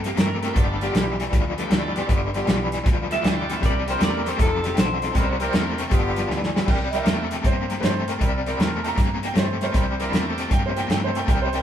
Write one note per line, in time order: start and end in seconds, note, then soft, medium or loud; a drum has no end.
0.00 0.12 G2 medium
0.04 0.16 C3 medium
0.04 0.17 A#3 medium
0.04 0.19 G4 medium
0.04 snare soft
0.04 closed hi-hat medium
0.17 0.50 G2 medium
0.17 0.40 C3 medium
0.17 0.41 A3 medium
0.17 0.56 A#4 loud
0.17 snare loud
0.17 closed hi-hat medium
0.42 0.55 C3 medium
0.42 0.92 A3 medium
0.42 0.55 A3 medium
0.42 0.92 B3 medium
0.42 0.50 C4 medium
0.42 0.92 D4 medium
0.42 0.51 E4 medium
0.42 0.92 F4 medium
0.42 0.92 G4 medium
0.42 0.51 A#4 medium
0.42 snare soft
0.42 closed hi-hat medium
0.56 0.89 G1 loud
0.56 0.79 G2 medium
0.56 0.79 D3 medium
0.56 0.71 B3 medium
0.56 0.71 F4 medium
0.56 0.71 G4 medium
0.56 kick loud
0.56 closed hi-hat medium
0.80 0.94 G2 medium
0.80 0.94 D3 medium
0.80 1.25 B3 medium
0.80 1.25 F4 medium
0.80 1.25 G4 loud
0.80 snare soft
0.80 closed hi-hat medium
0.94 1.27 B1 medium
0.94 1.17 G2 medium
0.94 1.17 E3 medium
0.94 snare loud
0.94 closed hi-hat medium
1.19 1.31 G2 medium
1.19 1.32 E3 medium
1.19 snare soft
1.19 closed hi-hat medium
1.32 1.66 D2 medium
1.32 1.55 G2 medium
1.32 1.55 F3 medium
1.32 kick loud
1.32 snare soft
1.32 closed hi-hat medium
1.57 1.69 G2 medium
1.57 1.70 F3 medium
1.57 2.06 A3 medium
1.57 2.07 B3 medium
1.57 2.07 D4 medium
1.57 2.07 F4 medium
1.57 2.07 G4 medium
1.57 snare soft
1.57 closed hi-hat medium
1.71 2.04 D2 medium
1.71 1.93 G2 medium
1.71 1.94 E3 medium
1.71 snare loud
1.71 closed hi-hat medium
1.95 2.08 G2 medium
1.95 2.08 E3 medium
1.95 2.04 B3 medium
1.95 2.04 F4 medium
1.95 2.05 G4 medium
1.95 snare soft
1.95 closed hi-hat medium
2.09 2.42 G1 medium
2.09 2.32 G2 medium
2.09 2.32 D3 loud
2.09 2.24 B3 medium
2.09 2.24 F4 medium
2.09 2.25 G4 medium
2.09 kick loud
2.09 closed hi-hat medium
2.33 2.46 G2 medium
2.33 2.46 D3 medium
2.33 2.78 B3 medium
2.33 2.78 F4 medium
2.33 2.78 G4 medium
2.33 snare soft
2.33 closed hi-hat medium
2.47 2.80 B1 medium
2.47 2.70 G2 medium
2.47 2.70 E3 medium
2.47 snare loud
2.47 closed hi-hat medium
2.72 2.85 G2 medium
2.72 2.85 E3 medium
2.72 snare soft
2.72 closed hi-hat medium
2.86 3.19 D2 medium
2.86 3.08 G2 medium
2.86 3.09 F3 medium
2.86 kick loud
2.86 snare soft
2.86 closed hi-hat medium
3.10 3.23 G2 medium
3.10 3.23 F3 medium
3.10 3.60 A3 medium
3.10 3.60 B3 medium
3.10 3.60 D4 medium
3.10 3.60 F4 medium
3.10 3.60 G4 medium
3.10 3.27 E5 medium
3.10 snare soft
3.10 closed hi-hat medium
3.24 3.57 D2 medium
3.24 3.47 G2 medium
3.24 3.47 E3 medium
3.24 3.53 G5 medium
3.24 snare loud
3.24 closed hi-hat medium
3.49 3.61 G2 medium
3.49 3.61 E3 medium
3.49 3.57 B3 medium
3.49 3.58 F4 medium
3.49 3.58 G4 medium
3.49 snare soft
3.49 closed hi-hat medium
3.53 3.64 E5 medium
3.62 3.95 C2 loud
3.62 3.85 C3 medium
3.62 3.85 G3 loud
3.62 4.39 A#3 medium
3.62 4.39 C4 medium
3.62 3.77 C4 medium
3.62 4.39 D4 medium
3.62 4.39 E4 medium
3.62 3.78 E4 medium
3.62 4.39 G4 medium
3.62 3.78 A#4 medium
3.62 3.88 D5 loud
3.62 kick loud
3.62 snare soft
3.62 closed hi-hat medium
3.87 3.99 C3 medium
3.87 4.00 G3 medium
3.87 4.31 C4 medium
3.87 4.31 E4 medium
3.87 4.31 A#4 medium
3.87 4.02 C5 medium
3.87 snare soft
3.87 closed hi-hat medium
4.01 4.34 E2 medium
4.01 4.23 C3 medium
4.01 4.23 A3 medium
4.01 4.29 D5 medium
4.01 snare loud
4.01 closed hi-hat medium
4.25 4.38 C3 medium
4.25 4.38 A3 medium
4.25 4.40 C5 medium
4.25 snare soft
4.25 closed hi-hat medium
4.39 4.72 F1 medium
4.39 4.61 F2 medium
4.39 4.61 C3 medium
4.39 4.87 D#4 medium
4.39 4.88 F4 medium
4.39 4.88 A4 medium
4.39 4.64 A4 medium
4.39 kick loud
4.39 snare soft
4.39 closed hi-hat medium
4.63 4.76 F2 medium
4.63 4.76 D#3 medium
4.63 4.78 G4 medium
4.63 snare soft
4.63 closed hi-hat medium
4.77 5.10 B1 medium
4.77 5.00 F2 medium
4.77 5.00 D3 loud
4.77 5.53 C5 loud
4.77 snare loud
4.77 closed hi-hat medium
5.02 5.14 F2 medium
5.02 5.14 D3 medium
5.02 5.10 D#4 medium
5.02 5.10 F4 medium
5.02 5.11 A4 medium
5.02 snare soft
5.02 closed hi-hat medium
5.15 5.48 C2 loud
5.15 5.38 C3 loud
5.15 5.38 G3 medium
5.15 5.37 A3 medium
5.15 5.38 B3 medium
5.15 5.30 C4 medium
5.15 5.38 C#4 medium
5.15 5.38 D#4 medium
5.15 5.30 E4 medium
5.15 5.38 F#4 medium
5.15 5.31 A#4 medium
5.15 kick loud
5.15 closed hi-hat medium
5.40 5.52 C3 medium
5.40 5.53 G3 medium
5.40 5.92 A#3 medium
5.40 5.84 C4 medium
5.40 5.92 C4 medium
5.40 5.92 D4 medium
5.40 5.84 E4 medium
5.40 5.92 E4 medium
5.40 5.92 G4 medium
5.40 5.84 A#4 loud
5.40 snare soft
5.40 closed hi-hat medium
5.53 5.86 E2 medium
5.53 5.76 C3 medium
5.53 5.76 A3 loud
5.53 snare loud
5.53 closed hi-hat medium
5.78 5.90 C3 medium
5.78 5.91 A3 medium
5.78 snare soft
5.78 closed hi-hat medium
5.91 6.24 G1 medium
5.91 6.14 G2 medium
5.91 6.14 D3 medium
5.91 6.39 B3 loud
5.91 6.40 F4 medium
5.91 6.40 G4 loud
5.91 kick loud
5.91 closed hi-hat medium
6.16 6.29 G2 medium
6.16 6.29 F3 medium
6.16 snare soft
6.16 closed hi-hat medium
6.30 6.63 D2 medium
6.30 6.52 G2 medium
6.30 6.53 E3 medium
6.30 snare medium
6.43 snare medium
6.54 6.67 G2 medium
6.54 6.67 E3 medium
6.54 6.62 B3 medium
6.54 6.63 F4 medium
6.54 6.63 G4 medium
6.54 snare loud
6.67 7.01 C2 medium
6.67 6.90 C3 medium
6.67 6.91 G3 medium
6.67 6.83 C4 medium
6.67 6.83 E4 medium
6.67 6.83 A#4 medium
6.67 6.93 G5 medium
6.67 kick loud
6.67 snare soft
6.67 crash medium
6.90 7.05 C3 medium
6.90 7.05 G3 medium
6.90 7.36 C4 medium
6.90 7.36 E4 medium
6.90 7.37 A#4 medium
6.90 6.92 D#5 medium
6.90 snare soft
6.90 closed hi-hat medium
6.95 7.44 E5 medium
7.06 7.39 E2 medium
7.06 7.29 C3 medium
7.06 7.29 A3 medium
7.06 7.28 A#3 medium
7.06 7.29 C4 medium
7.06 7.29 D4 medium
7.06 7.29 E4 medium
7.06 7.29 G4 medium
7.06 snare loud
7.06 closed hi-hat medium
7.31 7.44 C3 medium
7.31 7.44 A3 medium
7.31 snare soft
7.31 closed hi-hat medium
7.44 7.77 G2 medium
7.44 7.67 C3 medium
7.44 7.67 A#3 medium
7.44 7.83 C5 medium
7.44 kick loud
7.44 closed hi-hat medium
7.69 7.81 C3 medium
7.69 7.81 A#3 medium
7.69 snare soft
7.69 closed hi-hat medium
7.81 8.16 G2 medium
7.81 8.05 C3 medium
7.81 8.05 A3 medium
7.81 7.84 B4 medium
7.81 8.08 C5 medium
7.81 snare loud
7.81 closed hi-hat medium
8.07 8.20 C3 medium
8.07 8.20 A3 medium
8.07 8.15 C4 medium
8.07 8.16 E4 medium
8.07 8.16 A#4 medium
8.07 snare soft
8.07 closed hi-hat medium
8.20 8.54 C2 loud
8.20 8.43 C3 medium
8.20 8.44 G3 medium
8.20 8.36 C4 medium
8.20 8.36 E4 medium
8.20 8.36 A#4 loud
8.20 kick loud
8.20 closed hi-hat medium
8.46 8.58 C3 medium
8.46 8.59 G3 medium
8.46 8.90 C4 medium
8.46 8.90 E4 medium
8.46 8.90 A#4 medium
8.46 snare soft
8.46 closed hi-hat medium
8.59 8.92 E2 medium
8.59 8.82 C3 medium
8.59 8.82 A3 medium
8.59 snare loud
8.59 closed hi-hat medium
8.83 8.96 C3 medium
8.83 8.97 A3 medium
8.83 8.96 A#3 medium
8.83 8.96 C4 medium
8.83 8.97 D4 medium
8.83 8.97 E4 medium
8.83 8.97 G4 medium
8.83 8.85 A5 medium
8.83 snare soft
8.83 closed hi-hat medium
8.88 9.23 A#5 medium
8.97 9.31 G2 medium
8.97 9.20 C3 medium
8.97 9.20 A#3 medium
8.97 kick loud
8.97 snare soft
8.97 closed hi-hat medium
9.23 9.35 C3 medium
9.23 9.35 A#3 medium
9.23 9.37 G5 medium
9.23 snare soft
9.23 closed hi-hat medium
9.36 9.69 G2 medium
9.36 9.58 C3 medium
9.36 9.59 A3 medium
9.36 9.62 C5 medium
9.36 snare loud
9.36 closed hi-hat medium
9.61 9.73 C3 medium
9.61 9.74 A3 medium
9.61 9.69 C4 medium
9.61 9.69 E4 medium
9.61 9.70 A#4 medium
9.61 10.37 C5 medium
9.61 snare soft
9.61 closed hi-hat medium
9.74 10.07 C2 medium
9.74 9.97 C3 medium
9.74 9.98 G3 medium
9.74 9.89 C4 medium
9.74 9.89 E4 medium
9.74 9.90 A#4 medium
9.74 kick loud
9.74 snare soft
9.74 closed hi-hat medium
9.99 10.12 C3 medium
9.99 10.12 G3 medium
9.99 10.49 A#3 medium
9.99 10.43 C4 medium
9.99 10.49 C4 medium
9.99 10.49 D4 medium
9.99 10.43 E4 medium
9.99 10.49 E4 medium
9.99 10.49 G4 medium
9.99 10.43 A#4 medium
9.99 snare soft
9.99 closed hi-hat medium
10.12 10.45 E2 medium
10.12 10.35 C3 medium
10.12 10.36 A3 medium
10.12 snare loud
10.12 closed hi-hat medium
10.38 10.50 C3 medium
10.38 10.50 A3 medium
10.38 snare soft
10.38 closed hi-hat medium
10.51 10.84 G2 medium
10.51 10.74 C3 medium
10.51 10.74 A#3 medium
10.51 10.64 G5 medium
10.51 kick loud
10.51 closed hi-hat medium
10.66 10.77 C5 medium
10.76 10.89 C3 medium
10.76 10.88 A#3 medium
10.76 10.89 A#3 medium
10.76 10.88 C4 medium
10.76 10.88 D4 medium
10.76 10.89 E4 medium
10.76 10.89 G4 medium
10.76 10.90 G5 medium
10.76 snare soft
10.76 closed hi-hat medium
10.89 11.22 G2 medium
10.89 11.12 C3 medium
10.89 11.13 A3 medium
10.89 11.03 G5 medium
10.89 snare loud
10.89 closed hi-hat medium
11.04 11.16 C5 medium
11.15 11.27 C3 medium
11.15 11.28 A3 medium
11.15 11.23 C4 medium
11.15 11.23 E4 medium
11.15 11.23 A#4 medium
11.15 11.27 G5 medium
11.15 snare soft
11.15 closed hi-hat medium
11.28 11.61 C2 loud
11.28 11.51 C3 medium
11.28 11.51 G3 medium
11.28 11.43 C4 medium
11.28 11.44 E4 medium
11.28 11.44 A#4 medium
11.28 11.41 G5 medium
11.28 kick loud
11.28 snare soft
11.28 closed hi-hat medium
11.42 11.54 C5 medium
11.53 11.62 C3 medium
11.53 11.62 G3 medium
11.53 11.62 C4 medium
11.53 11.62 E4 medium
11.53 11.62 A#4 medium
11.53 11.62 G5 medium
11.53 snare soft
11.53 closed hi-hat medium